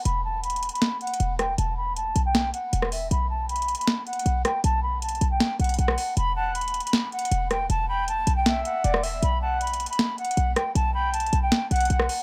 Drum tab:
HH |x-----------------------x---x---x---x---x---x---x-----------x---x---x---x-----------x-----------|x-----------------------x-----------x-----------x-----------x-----------x-----------o-----------|x-----------------------x---x---x---x---x---x---x-----------x---x---x---x-----------x-----------|x-----------------------x---x---x---x-----------x-----------x--x--x--x--x-----------o-----------|
SD |------------------------------------------------o-----------------------------------r-----------|------------------------------------------------o-----------------------------r-----------------|------------------------------------------------o-----------------------------------r-----------|------------------------------------------------o-----------------------------r-----------------|

HH |x-----------------------x---x---x---x---x---x---x-----------x---x---x---x-----------x-----------|x-----------------------x-----------x-----------x-----------x-----------x-----------o-----------|x-----------------------x---x---x---x---x---x---x-----------x---x---x---x-----------x-----------|x-----------------------x---x---x---x-----------x-----------x--x--x--x--x-----------o-----------|
SD |------------------------------------------------o-----------------------------------r-----------|------------------------------------------------o-----------------------------r-----------------|------------------------------------------------o-----------------------------------r-----------|------------------------------------------------o-----------------------------r-----------------|